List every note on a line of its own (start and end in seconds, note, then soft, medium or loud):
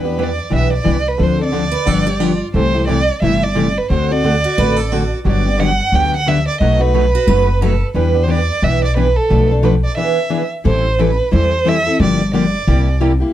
0.00 0.38 E2 medium
0.00 0.24 B4 medium
0.05 0.18 B3 soft
0.05 0.18 D4 medium
0.05 0.18 G4 medium
0.18 0.29 E3 medium
0.18 0.29 G3 medium
0.18 0.29 B3 medium
0.18 0.29 D4 medium
0.18 0.29 E4 medium
0.18 0.29 G4 medium
0.18 0.29 B4 medium
0.23 0.54 D5 medium
0.50 0.80 B1 medium
0.50 0.71 E3 medium
0.50 0.72 G3 medium
0.50 0.71 B3 medium
0.50 0.72 D4 medium
0.50 0.72 E4 medium
0.50 0.72 G4 medium
0.50 0.72 B4 medium
0.56 0.73 E5 medium
0.73 1.10 D5 medium
0.84 1.14 C2 medium
0.84 0.96 E3 medium
0.84 0.96 G3 medium
0.84 0.96 B3 medium
0.84 0.96 D4 medium
0.84 0.96 E4 medium
0.84 0.96 G4 medium
0.84 0.96 B4 medium
1.08 1.25 B4 medium
1.19 1.73 D2 medium
1.19 1.39 D3 medium
1.19 1.39 F3 medium
1.19 1.39 C4 medium
1.19 1.39 D4 medium
1.19 1.38 A4 medium
1.23 1.42 C5 medium
1.39 1.51 C4 soft
1.39 1.52 D4 soft
1.39 1.52 A4 medium
1.44 2.39 D5 medium
1.52 1.63 D3 medium
1.52 1.64 F3 medium
1.52 1.64 C4 medium
1.52 1.64 D4 medium
1.52 1.64 A4 medium
1.72 1.87 B4 medium
1.86 2.41 G1 medium
1.86 2.07 D3 medium
1.86 2.07 F3 medium
1.86 2.07 B3 medium
1.86 2.07 D4 medium
1.86 2.07 G4 medium
1.86 2.08 A4 medium
2.07 2.20 G4 medium
2.20 2.31 D3 medium
2.20 2.31 F3 medium
2.20 2.31 B3 medium
2.20 2.31 D4 medium
2.20 2.47 F4 medium
2.20 2.31 G4 medium
2.54 3.08 C2 medium
2.54 2.74 C3 medium
2.54 2.74 E3 medium
2.54 2.75 G3 medium
2.54 2.73 A3 medium
2.54 2.75 C4 medium
2.54 2.74 E4 medium
2.54 2.73 G4 medium
2.54 2.75 A4 medium
2.54 2.86 C5 medium
2.74 2.88 A3 soft
2.74 2.88 E4 soft
2.74 2.88 G4 medium
2.88 2.99 C3 medium
2.88 2.99 E3 medium
2.88 2.99 G3 medium
2.88 3.00 A3 medium
2.88 2.99 C4 medium
2.88 2.99 E4 medium
2.88 3.00 G4 medium
2.88 2.99 A4 medium
2.88 3.20 D5 medium
3.22 3.76 G1 medium
3.22 3.42 C3 medium
3.22 3.43 E3 medium
3.22 3.43 G3 medium
3.22 3.43 A3 soft
3.22 3.43 C4 medium
3.22 3.43 E4 medium
3.22 3.43 G4 medium
3.22 3.43 A4 medium
3.22 3.45 E5 medium
3.44 3.79 D5 medium
3.55 3.67 C3 medium
3.55 3.67 E3 medium
3.55 3.66 G3 medium
3.55 3.67 A3 medium
3.55 3.66 C4 medium
3.55 3.67 E4 medium
3.55 3.67 G4 medium
3.55 3.67 A4 medium
3.78 3.91 B4 medium
3.90 4.44 D2 medium
3.90 4.10 D3 medium
3.90 4.09 A3 medium
3.90 4.09 C4 medium
3.90 4.10 F#4 medium
3.90 4.09 A4 medium
3.90 4.14 C5 medium
4.10 4.23 C4 soft
4.10 4.23 F#4 soft
4.10 4.23 A4 medium
4.10 5.12 D5 medium
4.24 4.34 D3 medium
4.24 4.34 A3 medium
4.24 4.35 C4 medium
4.24 4.35 F#4 medium
4.24 4.35 A4 medium
4.44 4.58 F#4 medium
4.58 5.12 A1 medium
4.58 4.78 D3 medium
4.58 4.79 A3 medium
4.58 4.79 C4 medium
4.58 4.79 F#4 medium
4.58 4.79 A4 medium
4.58 4.76 B4 medium
4.76 4.92 A4 medium
4.92 5.03 D3 medium
4.92 5.03 A3 medium
4.92 5.03 C4 medium
4.92 5.18 F#4 medium
4.92 5.03 F#4 medium
4.92 5.03 A4 medium
5.25 5.79 G1 medium
5.25 5.45 D3 medium
5.25 5.45 F#3 medium
5.25 5.45 B3 medium
5.25 5.45 D4 medium
5.25 5.45 G4 medium
5.25 5.62 D5 medium
5.46 5.59 B3 soft
5.46 5.59 D4 soft
5.46 5.59 G4 medium
5.60 5.70 D3 medium
5.60 5.70 F#3 medium
5.60 5.70 B3 medium
5.60 5.70 D4 medium
5.60 5.70 G4 medium
5.60 5.96 F#5 medium
5.92 6.46 D2 medium
5.92 6.13 D3 soft
5.92 6.13 F#3 medium
5.92 6.13 B3 medium
5.92 6.13 D4 medium
5.92 6.14 G4 medium
5.92 6.14 G5 medium
6.17 6.30 F#5 medium
6.27 6.38 D3 medium
6.27 6.38 F#3 medium
6.27 6.38 B3 medium
6.27 6.38 D4 medium
6.27 6.38 G4 medium
6.27 6.47 E5 medium
6.48 6.60 D5 medium
6.60 7.14 B1 medium
6.60 6.80 B2 medium
6.60 6.80 F#3 medium
6.60 6.80 A3 medium
6.60 6.80 D#4 medium
6.60 6.78 F#4 medium
6.60 6.81 B4 medium
6.60 6.83 D#5 medium
6.80 6.93 A3 soft
6.80 6.93 D#4 medium
6.80 6.93 F#4 medium
6.80 7.82 B4 medium
6.94 7.05 B2 medium
6.94 7.05 F#3 medium
6.94 7.05 A3 medium
6.94 7.05 D#4 medium
6.94 7.05 F#4 medium
6.94 7.05 B4 medium
7.15 7.28 F#4 medium
7.27 7.81 F#1 medium
7.27 7.48 B2 medium
7.27 7.48 F#3 medium
7.27 7.48 A3 medium
7.27 7.48 D#4 medium
7.27 7.48 F#4 medium
7.27 7.62 B4 medium
7.27 7.48 B4 medium
7.61 7.72 B2 medium
7.61 7.73 F#3 medium
7.61 7.73 A3 medium
7.61 7.72 D#4 medium
7.61 7.73 F#4 medium
7.61 7.87 A4 medium
7.61 7.73 B4 medium
7.94 8.49 E2 medium
7.94 8.14 E3 medium
7.94 8.16 G3 medium
7.94 8.14 B3 medium
7.94 8.13 D4 medium
7.94 8.16 E4 medium
7.94 8.13 G4 medium
7.94 8.25 B4 medium
7.94 8.16 B4 medium
8.14 8.27 B3 soft
8.14 8.26 D4 medium
8.14 8.27 G4 medium
8.23 8.39 E3 medium
8.23 8.32 C5 medium
8.28 8.39 G3 medium
8.28 8.39 B3 medium
8.28 8.39 D4 medium
8.28 8.40 E4 medium
8.28 8.39 G4 medium
8.28 8.40 B4 medium
8.28 8.65 D5 medium
8.62 9.16 B1 medium
8.62 8.83 E3 medium
8.62 8.83 G3 medium
8.62 8.83 B3 medium
8.62 8.83 D4 medium
8.62 8.83 E4 medium
8.62 8.83 G4 medium
8.62 8.83 B4 medium
8.62 8.83 E5 medium
8.84 8.96 D5 medium
8.96 9.07 E3 medium
8.96 9.07 G3 medium
8.96 9.07 B3 medium
8.96 9.07 D4 medium
8.96 9.07 E4 medium
8.96 9.07 G4 medium
8.96 9.18 B4 medium
8.96 9.08 B4 medium
9.16 9.50 A4 medium
9.30 9.84 B1 medium
9.30 9.50 B2 medium
9.30 9.50 F3 medium
9.30 9.50 A3 medium
9.30 9.50 D4 medium
9.30 9.49 A4 medium
9.30 9.50 B4 medium
9.50 9.62 A3 soft
9.50 9.62 D4 medium
9.50 9.62 A4 medium
9.62 9.74 B2 medium
9.62 9.74 F3 medium
9.62 9.74 A3 medium
9.62 9.74 D4 medium
9.62 9.74 A4 medium
9.62 9.74 B4 medium
9.84 9.97 D5 medium
9.97 10.17 E3 medium
9.97 10.17 B3 medium
9.97 10.18 D4 medium
9.97 10.18 G#4 medium
9.97 10.18 B4 medium
9.97 10.48 E5 medium
10.30 10.41 E3 medium
10.30 10.41 B3 medium
10.30 10.42 D4 medium
10.30 10.41 G#4 medium
10.30 10.42 B4 medium
10.64 11.19 A1 medium
10.64 10.85 E3 medium
10.64 10.85 G3 medium
10.64 10.85 C4 medium
10.64 10.85 E4 medium
10.64 10.85 A4 medium
10.64 11.02 C5 medium
10.99 11.09 E3 medium
10.99 11.10 G3 medium
10.99 11.10 C4 medium
10.99 11.10 E4 medium
10.99 11.10 A4 medium
10.99 11.33 B4 medium
11.31 11.87 E2 medium
11.31 11.52 E3 medium
11.31 11.52 G3 medium
11.31 11.52 C4 medium
11.31 11.52 E4 medium
11.31 11.52 A4 medium
11.31 11.70 C5 medium
11.65 11.76 E3 medium
11.65 11.76 G3 medium
11.65 11.76 C4 medium
11.65 11.77 E4 medium
11.65 11.77 A4 medium
11.65 12.01 E5 loud
11.86 12.00 C4 soft
11.86 11.99 E4 soft
11.86 11.99 A4 soft
12.00 12.54 G1 medium
12.00 12.20 D3 medium
12.00 12.20 F3 medium
12.00 12.20 A#3 medium
12.00 12.20 D4 medium
12.00 12.20 G4 medium
12.00 12.32 D5 medium
12.33 12.44 D3 medium
12.33 12.44 F3 medium
12.33 12.44 A#3 medium
12.33 12.44 D4 medium
12.33 12.44 G4 medium
12.33 12.97 D5 medium
12.67 13.21 C2 medium
12.67 12.87 C3 medium
12.67 12.87 G3 medium
12.67 12.88 A#3 medium
12.67 12.88 E4 medium
12.67 12.88 G4 medium
13.00 13.11 C3 medium
13.00 13.11 G3 medium
13.00 13.11 A#3 medium
13.00 13.12 E4 medium
13.00 13.12 G4 medium
13.20 13.33 A#3 soft
13.20 13.33 E4 medium
13.20 13.33 G4 medium